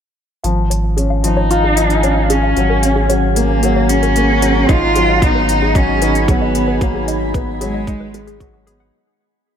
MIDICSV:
0, 0, Header, 1, 7, 480
1, 0, Start_track
1, 0, Tempo, 530973
1, 401, Time_signature, 4, 2, 24, 8
1, 8649, End_track
2, 0, Start_track
2, 0, Title_t, "Ambient pad"
2, 0, Program_c, 0, 92
2, 394, Note_on_c, 0, 77, 73
2, 395, Note_on_c, 0, 68, 72
2, 395, Note_on_c, 0, 80, 87
2, 396, Note_on_c, 0, 61, 78
2, 2299, Note_off_c, 0, 77, 0
2, 2299, Note_off_c, 0, 80, 0
2, 2322, Note_on_c, 0, 78, 74
2, 2325, Note_on_c, 0, 82, 90
2, 4203, Note_off_c, 0, 61, 0
2, 4223, Note_off_c, 0, 78, 0
2, 4224, Note_off_c, 0, 82, 0
2, 4236, Note_on_c, 0, 83, 91
2, 4237, Note_on_c, 0, 80, 73
2, 4238, Note_on_c, 0, 63, 85
2, 8042, Note_off_c, 0, 68, 0
2, 8043, Note_off_c, 0, 80, 0
2, 8043, Note_off_c, 0, 83, 0
2, 8044, Note_off_c, 0, 63, 0
2, 8649, End_track
3, 0, Start_track
3, 0, Title_t, "Synth arpeggio sound"
3, 0, Program_c, 1, 84
3, 394, Note_on_c, 1, 77, 73
3, 459, Note_off_c, 1, 77, 0
3, 635, Note_on_c, 1, 73, 72
3, 675, Note_off_c, 1, 73, 0
3, 875, Note_on_c, 1, 68, 76
3, 940, Note_off_c, 1, 68, 0
3, 997, Note_on_c, 1, 77, 69
3, 1061, Note_off_c, 1, 77, 0
3, 1237, Note_on_c, 1, 73, 72
3, 1276, Note_off_c, 1, 73, 0
3, 1482, Note_on_c, 1, 68, 69
3, 1544, Note_off_c, 1, 68, 0
3, 1601, Note_on_c, 1, 77, 74
3, 1663, Note_off_c, 1, 77, 0
3, 1843, Note_on_c, 1, 73, 76
3, 1879, Note_off_c, 1, 73, 0
3, 2080, Note_on_c, 1, 68, 74
3, 2142, Note_off_c, 1, 68, 0
3, 2200, Note_on_c, 1, 77, 69
3, 2262, Note_off_c, 1, 77, 0
3, 2439, Note_on_c, 1, 70, 74
3, 2477, Note_off_c, 1, 70, 0
3, 2675, Note_on_c, 1, 68, 67
3, 2740, Note_off_c, 1, 68, 0
3, 2798, Note_on_c, 1, 73, 82
3, 2861, Note_off_c, 1, 73, 0
3, 3039, Note_on_c, 1, 70, 69
3, 3077, Note_off_c, 1, 70, 0
3, 3282, Note_on_c, 1, 68, 81
3, 3344, Note_off_c, 1, 68, 0
3, 3402, Note_on_c, 1, 73, 70
3, 3464, Note_off_c, 1, 73, 0
3, 3641, Note_on_c, 1, 70, 73
3, 3678, Note_off_c, 1, 70, 0
3, 3885, Note_on_c, 1, 68, 71
3, 3945, Note_off_c, 1, 68, 0
3, 4000, Note_on_c, 1, 73, 73
3, 4063, Note_off_c, 1, 73, 0
3, 4240, Note_on_c, 1, 71, 79
3, 4278, Note_off_c, 1, 71, 0
3, 4481, Note_on_c, 1, 68, 77
3, 4543, Note_off_c, 1, 68, 0
3, 4602, Note_on_c, 1, 75, 73
3, 4663, Note_off_c, 1, 75, 0
3, 4839, Note_on_c, 1, 71, 75
3, 4878, Note_off_c, 1, 71, 0
3, 5083, Note_on_c, 1, 68, 71
3, 5144, Note_off_c, 1, 68, 0
3, 5202, Note_on_c, 1, 75, 78
3, 5263, Note_off_c, 1, 75, 0
3, 5442, Note_on_c, 1, 71, 75
3, 5479, Note_off_c, 1, 71, 0
3, 5680, Note_on_c, 1, 68, 77
3, 5743, Note_off_c, 1, 68, 0
3, 5802, Note_on_c, 1, 75, 74
3, 5863, Note_off_c, 1, 75, 0
3, 6038, Note_on_c, 1, 71, 77
3, 6077, Note_off_c, 1, 71, 0
3, 6280, Note_on_c, 1, 68, 74
3, 6343, Note_off_c, 1, 68, 0
3, 6401, Note_on_c, 1, 75, 77
3, 6463, Note_off_c, 1, 75, 0
3, 6638, Note_on_c, 1, 71, 81
3, 6677, Note_off_c, 1, 71, 0
3, 6881, Note_on_c, 1, 68, 76
3, 6943, Note_off_c, 1, 68, 0
3, 7000, Note_on_c, 1, 75, 71
3, 7062, Note_off_c, 1, 75, 0
3, 7236, Note_on_c, 1, 71, 78
3, 7276, Note_off_c, 1, 71, 0
3, 7478, Note_on_c, 1, 68, 76
3, 7572, Note_off_c, 1, 68, 0
3, 7597, Note_on_c, 1, 66, 80
3, 7661, Note_off_c, 1, 66, 0
3, 7718, Note_on_c, 1, 66, 75
3, 7757, Note_off_c, 1, 66, 0
3, 7836, Note_on_c, 1, 68, 108
3, 7901, Note_off_c, 1, 68, 0
3, 7957, Note_on_c, 1, 78, 81
3, 8021, Note_off_c, 1, 78, 0
3, 8649, End_track
4, 0, Start_track
4, 0, Title_t, "Cello"
4, 0, Program_c, 2, 42
4, 1126, Note_on_c, 2, 63, 105
4, 2085, Note_on_c, 2, 61, 87
4, 2098, Note_off_c, 2, 63, 0
4, 2803, Note_off_c, 2, 61, 0
4, 3044, Note_on_c, 2, 58, 94
4, 3517, Note_on_c, 2, 61, 96
4, 3531, Note_off_c, 2, 58, 0
4, 4247, Note_on_c, 2, 65, 113
4, 4261, Note_off_c, 2, 61, 0
4, 4728, Note_on_c, 2, 63, 104
4, 4742, Note_off_c, 2, 65, 0
4, 5208, Note_on_c, 2, 61, 95
4, 5222, Note_off_c, 2, 63, 0
4, 5687, Note_on_c, 2, 59, 94
4, 5700, Note_off_c, 2, 61, 0
4, 6158, Note_on_c, 2, 58, 81
4, 6172, Note_off_c, 2, 59, 0
4, 6640, Note_off_c, 2, 58, 0
4, 6873, Note_on_c, 2, 56, 124
4, 7801, Note_off_c, 2, 56, 0
4, 8649, End_track
5, 0, Start_track
5, 0, Title_t, "Upright piano"
5, 0, Program_c, 3, 0
5, 398, Note_on_c, 3, 53, 68
5, 537, Note_off_c, 3, 53, 0
5, 565, Control_c, 3, 64, 127
5, 878, Note_on_c, 3, 61, 63
5, 1017, Note_off_c, 3, 61, 0
5, 1117, Note_on_c, 3, 53, 67
5, 1256, Note_off_c, 3, 53, 0
5, 1362, Note_on_c, 3, 65, 88
5, 1590, Note_off_c, 3, 65, 0
5, 1606, Note_on_c, 3, 53, 64
5, 1741, Note_off_c, 3, 53, 0
5, 1841, Note_on_c, 3, 61, 69
5, 1978, Note_off_c, 3, 61, 0
5, 2322, Note_on_c, 3, 54, 69
5, 2334, Control_c, 3, 64, 0
5, 2468, Control_c, 3, 64, 127
5, 2550, Note_off_c, 3, 54, 0
5, 2562, Note_on_c, 3, 61, 64
5, 2790, Note_off_c, 3, 61, 0
5, 2801, Note_on_c, 3, 54, 69
5, 3029, Note_off_c, 3, 54, 0
5, 3043, Note_on_c, 3, 58, 75
5, 3270, Note_off_c, 3, 58, 0
5, 3284, Note_on_c, 3, 54, 81
5, 3420, Note_off_c, 3, 54, 0
5, 3763, Note_on_c, 3, 58, 73
5, 3899, Note_off_c, 3, 58, 0
5, 4000, Note_on_c, 3, 54, 68
5, 4138, Note_off_c, 3, 54, 0
5, 4243, Note_on_c, 3, 63, 85
5, 4255, Control_c, 3, 64, 0
5, 4416, Control_c, 3, 64, 127
5, 4471, Note_off_c, 3, 63, 0
5, 4482, Note_on_c, 3, 54, 72
5, 4619, Note_off_c, 3, 54, 0
5, 4722, Note_on_c, 3, 59, 74
5, 4859, Note_off_c, 3, 59, 0
5, 5204, Note_on_c, 3, 54, 79
5, 5431, Note_off_c, 3, 54, 0
5, 5443, Note_on_c, 3, 63, 75
5, 5670, Note_off_c, 3, 63, 0
5, 5684, Note_on_c, 3, 54, 79
5, 5911, Note_off_c, 3, 54, 0
5, 5920, Note_on_c, 3, 59, 73
5, 6149, Note_off_c, 3, 59, 0
5, 6156, Note_on_c, 3, 54, 81
5, 6296, Note_off_c, 3, 54, 0
5, 6641, Note_on_c, 3, 59, 74
5, 6778, Note_off_c, 3, 59, 0
5, 6877, Note_on_c, 3, 54, 81
5, 7016, Note_off_c, 3, 54, 0
5, 7119, Note_on_c, 3, 63, 102
5, 7348, Note_off_c, 3, 63, 0
5, 7362, Note_on_c, 3, 56, 101
5, 7498, Note_off_c, 3, 56, 0
5, 7599, Note_on_c, 3, 54, 83
5, 7828, Note_off_c, 3, 54, 0
5, 7842, Note_on_c, 3, 59, 79
5, 8070, Note_off_c, 3, 59, 0
5, 8095, Control_c, 3, 64, 0
5, 8649, End_track
6, 0, Start_track
6, 0, Title_t, "Sub bass"
6, 0, Program_c, 4, 38
6, 397, Note_on_c, 4, 32, 88
6, 2296, Note_off_c, 4, 32, 0
6, 2319, Note_on_c, 4, 32, 91
6, 4216, Note_off_c, 4, 32, 0
6, 4238, Note_on_c, 4, 32, 85
6, 8056, Note_off_c, 4, 32, 0
6, 8649, End_track
7, 0, Start_track
7, 0, Title_t, "Drums"
7, 400, Note_on_c, 9, 42, 34
7, 490, Note_off_c, 9, 42, 0
7, 643, Note_on_c, 9, 42, 51
7, 734, Note_off_c, 9, 42, 0
7, 883, Note_on_c, 9, 42, 36
7, 973, Note_off_c, 9, 42, 0
7, 1121, Note_on_c, 9, 42, 56
7, 1211, Note_off_c, 9, 42, 0
7, 1362, Note_on_c, 9, 42, 34
7, 1452, Note_off_c, 9, 42, 0
7, 1599, Note_on_c, 9, 42, 59
7, 1690, Note_off_c, 9, 42, 0
7, 1719, Note_on_c, 9, 42, 27
7, 1809, Note_off_c, 9, 42, 0
7, 1838, Note_on_c, 9, 42, 37
7, 1928, Note_off_c, 9, 42, 0
7, 2079, Note_on_c, 9, 42, 54
7, 2169, Note_off_c, 9, 42, 0
7, 2319, Note_on_c, 9, 42, 36
7, 2410, Note_off_c, 9, 42, 0
7, 2558, Note_on_c, 9, 42, 56
7, 2649, Note_off_c, 9, 42, 0
7, 2799, Note_on_c, 9, 42, 43
7, 2890, Note_off_c, 9, 42, 0
7, 3040, Note_on_c, 9, 42, 60
7, 3131, Note_off_c, 9, 42, 0
7, 3280, Note_on_c, 9, 42, 39
7, 3370, Note_off_c, 9, 42, 0
7, 3520, Note_on_c, 9, 42, 58
7, 3610, Note_off_c, 9, 42, 0
7, 3641, Note_on_c, 9, 42, 28
7, 3732, Note_off_c, 9, 42, 0
7, 3759, Note_on_c, 9, 42, 41
7, 3849, Note_off_c, 9, 42, 0
7, 3999, Note_on_c, 9, 42, 61
7, 4089, Note_off_c, 9, 42, 0
7, 4239, Note_on_c, 9, 36, 108
7, 4241, Note_on_c, 9, 42, 39
7, 4330, Note_off_c, 9, 36, 0
7, 4332, Note_off_c, 9, 42, 0
7, 4480, Note_on_c, 9, 42, 55
7, 4570, Note_off_c, 9, 42, 0
7, 4719, Note_on_c, 9, 36, 108
7, 4722, Note_on_c, 9, 42, 44
7, 4810, Note_off_c, 9, 36, 0
7, 4812, Note_off_c, 9, 42, 0
7, 4962, Note_on_c, 9, 42, 62
7, 5052, Note_off_c, 9, 42, 0
7, 5199, Note_on_c, 9, 36, 101
7, 5203, Note_on_c, 9, 42, 41
7, 5289, Note_off_c, 9, 36, 0
7, 5294, Note_off_c, 9, 42, 0
7, 5439, Note_on_c, 9, 42, 62
7, 5530, Note_off_c, 9, 42, 0
7, 5562, Note_on_c, 9, 42, 29
7, 5652, Note_off_c, 9, 42, 0
7, 5679, Note_on_c, 9, 36, 110
7, 5682, Note_on_c, 9, 42, 45
7, 5769, Note_off_c, 9, 36, 0
7, 5772, Note_off_c, 9, 42, 0
7, 5921, Note_on_c, 9, 42, 63
7, 6011, Note_off_c, 9, 42, 0
7, 6158, Note_on_c, 9, 36, 112
7, 6162, Note_on_c, 9, 42, 42
7, 6249, Note_off_c, 9, 36, 0
7, 6252, Note_off_c, 9, 42, 0
7, 6400, Note_on_c, 9, 42, 62
7, 6491, Note_off_c, 9, 42, 0
7, 6638, Note_on_c, 9, 36, 116
7, 6641, Note_on_c, 9, 42, 42
7, 6728, Note_off_c, 9, 36, 0
7, 6731, Note_off_c, 9, 42, 0
7, 6881, Note_on_c, 9, 42, 64
7, 6971, Note_off_c, 9, 42, 0
7, 7118, Note_on_c, 9, 36, 105
7, 7121, Note_on_c, 9, 42, 40
7, 7208, Note_off_c, 9, 36, 0
7, 7211, Note_off_c, 9, 42, 0
7, 7360, Note_on_c, 9, 42, 67
7, 7451, Note_off_c, 9, 42, 0
7, 7481, Note_on_c, 9, 42, 29
7, 7571, Note_off_c, 9, 42, 0
7, 7597, Note_on_c, 9, 36, 107
7, 7600, Note_on_c, 9, 42, 45
7, 7688, Note_off_c, 9, 36, 0
7, 7691, Note_off_c, 9, 42, 0
7, 7840, Note_on_c, 9, 42, 66
7, 7931, Note_off_c, 9, 42, 0
7, 8649, End_track
0, 0, End_of_file